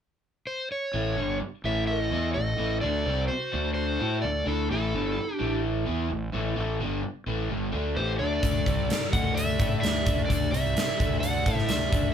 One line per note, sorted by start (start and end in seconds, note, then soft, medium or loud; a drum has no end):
0.47 0.69 C5 medium
0.72 1.38 C#5 medium
0.94 1.16 A1 medium
0.94 1.17 A2 medium
0.94 1.17 E3 medium
0.94 1.17 A3 medium
1.16 1.40 G1 medium
1.16 1.40 G2 medium
1.16 1.40 D3 medium
1.16 1.41 G3 medium
1.41 muted fingered electric bass stroke soft
1.41 muted overdriven electric guitar stroke medium
1.64 2.08 A1 medium
1.64 2.11 A2 medium
1.64 2.10 E3 medium
1.64 2.12 A3 medium
1.64 1.87 C#5 medium
1.64 1.87 E5 medium
1.87 2.33 A4 medium
1.87 1.98 E5 medium
1.98 2.33 D#5 medium
2.11 2.33 E2 medium
2.11 2.34 E3 medium
2.11 2.35 B3 medium
2.11 2.35 E4 loud
2.34 2.57 A1 medium
2.34 2.54 A2 medium
2.34 2.54 E3 medium
2.34 2.79 A4 medium
2.34 2.81 D#5 medium
2.58 2.80 A1 medium
2.58 2.81 A2 medium
2.58 2.81 E3 medium
2.58 2.82 A3 medium
2.81 3.05 D2 medium
2.81 3.05 D3 medium
2.81 3.05 A3 medium
2.81 3.06 D4 medium
2.81 3.26 A4 medium
2.81 3.28 D5 loud
3.05 3.28 C2 medium
3.05 3.28 C3 medium
3.05 3.29 G3 medium
3.05 3.29 C4 medium
3.28 3.73 F#4 medium
3.28 3.73 C5 medium
3.28 muted overdriven electric guitar stroke medium
3.28 muted fingered electric bass stroke soft
3.53 3.97 D2 medium
3.53 3.99 D3 medium
3.53 3.98 A3 medium
3.53 3.99 D4 medium
3.74 4.19 F#4 medium
3.74 4.21 C5 medium
3.99 4.22 A2 medium
3.99 4.22 A3 medium
3.99 4.22 E4 medium
3.99 4.23 A4 medium
4.22 4.45 D2 medium
4.22 4.42 D3 medium
4.22 4.42 A3 medium
4.22 4.45 A4 medium
4.22 4.47 D5 medium
4.46 4.68 D2 medium
4.46 4.69 D3 medium
4.46 4.69 A3 medium
4.46 4.69 D4 medium
4.46 4.68 E4 medium
4.46 4.71 A4 medium
4.69 4.92 A1 medium
4.69 4.93 A2 medium
4.69 4.93 E3 medium
4.69 4.93 A3 medium
4.69 5.33 E4 medium
4.69 5.35 A4 medium
4.94 5.16 G1 medium
4.94 5.16 G2 medium
4.94 5.16 D3 medium
4.94 5.17 G3 medium
5.17 muted overdriven electric guitar stroke medium
5.17 muted fingered electric bass stroke soft
5.33 5.59 D4 medium
5.33 5.60 G4 medium
5.40 5.84 A1 medium
5.40 5.86 A2 medium
5.40 5.85 E3 medium
5.40 5.87 A3 medium
5.86 6.09 E2 medium
5.86 6.09 E3 medium
5.86 6.10 B3 medium
5.86 6.10 E4 loud
6.10 6.33 A1 medium
6.10 6.29 A2 medium
6.10 6.29 E3 medium
6.33 6.56 A1 medium
6.33 6.55 A2 medium
6.33 6.56 E3 medium
6.33 6.56 A3 medium
6.56 6.79 A1 medium
6.56 6.79 A2 medium
6.56 6.80 E3 medium
6.56 6.80 A3 medium
6.80 7.02 G1 medium
6.80 7.03 G2 medium
6.80 7.03 D3 medium
6.80 7.04 G3 medium
7.04 muted fingered electric bass stroke soft
7.04 muted overdriven electric guitar stroke medium
7.26 7.48 A1 medium
7.26 7.50 A2 medium
7.26 7.50 E3 medium
7.26 7.50 A3 medium
7.49 7.72 G1 medium
7.49 7.72 G2 medium
7.49 7.71 D3 medium
7.49 7.72 G3 medium
7.72 7.95 D2 medium
7.72 7.95 D3 medium
7.72 7.95 A3 medium
7.72 7.96 D4 medium
7.97 8.18 A1 medium
7.97 8.19 A2 medium
7.97 8.19 E3 medium
7.97 8.19 A3 medium
7.97 8.18 G4 medium
7.97 8.19 C5 medium
8.19 8.42 D2 medium
8.19 8.41 D3 medium
8.19 8.42 A3 medium
8.19 8.43 D4 medium
8.19 9.08 A4 medium
8.19 9.09 D5 medium
8.43 8.65 D2 medium
8.43 8.65 D3 medium
8.43 8.66 A3 loud
8.43 8.66 D4 medium
8.43 kick medium
8.43 closed hi-hat medium
8.65 8.88 C2 medium
8.65 8.89 C3 medium
8.65 8.89 G3 medium
8.65 8.89 C4 medium
8.65 kick medium
8.65 closed hi-hat medium
8.89 muted fingered electric bass stroke soft
8.89 muted overdriven electric guitar stroke medium
8.89 snare loud
8.89 closed hi-hat medium
9.11 9.56 D2 medium
9.11 9.59 D3 medium
9.11 9.57 A3 medium
9.11 9.59 D4 medium
9.11 9.33 D#5 medium
9.11 9.37 F#5 medium
9.11 kick medium
9.11 closed hi-hat medium
9.33 9.78 D5 medium
9.33 9.80 E5 medium
9.37 closed hi-hat medium
9.59 9.81 A2 medium
9.59 9.82 A3 medium
9.59 9.82 E4 medium
9.59 9.82 A4 medium
9.59 kick medium
9.59 closed hi-hat medium
9.80 10.05 D2 medium
9.80 10.01 D3 medium
9.80 10.01 A3 medium
9.80 10.25 D5 medium
9.80 10.25 E5 loud
9.80 closed hi-hat medium
9.85 snare loud
10.06 10.28 D2 medium
10.06 10.27 D3 medium
10.06 10.28 A3 medium
10.06 10.29 D4 medium
10.06 kick loud
10.06 closed hi-hat medium
10.25 10.51 D3 medium
10.25 10.52 A3 medium
10.25 10.50 A4 medium
10.25 10.51 D5 medium
10.30 10.51 D2 medium
10.30 10.52 D4 loud
10.30 kick medium
10.30 closed hi-hat medium
10.51 10.74 C2 medium
10.51 10.74 C3 medium
10.51 10.75 G3 medium
10.51 10.75 C4 medium
10.51 11.17 D5 medium
10.51 11.18 E5 medium
10.51 closed hi-hat medium
10.75 muted overdriven electric guitar stroke soft
10.75 muted fingered electric bass stroke soft
10.75 snare loud
10.75 closed hi-hat medium
10.98 11.43 D2 medium
10.98 11.44 D3 medium
10.98 11.44 A3 loud
10.98 11.45 D4 loud
10.98 kick loud
10.98 closed hi-hat medium
11.20 11.64 D5 medium
11.20 11.64 F#5 loud
11.20 closed hi-hat medium
11.45 11.68 A2 medium
11.45 11.68 A3 medium
11.45 11.68 E4 medium
11.45 11.69 A4 medium
11.45 kick loud
11.45 closed hi-hat medium
11.58 snare soft
11.66 11.91 D2 medium
11.66 11.87 D3 medium
11.66 11.88 A3 medium
11.66 12.12 D5 medium
11.66 12.14 E5 medium
11.66 snare loud
11.66 closed hi-hat medium
11.92 12.14 D2 medium
11.92 12.14 D3 medium
11.92 12.14 A3 medium
11.92 12.14 D4 loud
11.92 kick loud
11.92 closed hi-hat medium